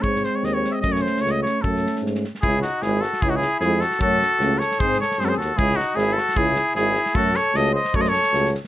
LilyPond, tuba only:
\new Staff \with { instrumentName = "Tuba" } { \clef bass \time 2/4 \tempo 4 = 153 gis,4 dis,4 | fis,4 cis,4 | fis,4 gis,4 | cis,4 gis,,4 |
cis,4 eis,4 | fis,4 cis,4 | gis,4 fis,8 dis,8 | cis,4 gis,,4 |
cis,4 gis,,4 | fis,4 cis,4 | fis,4 cis,4 | }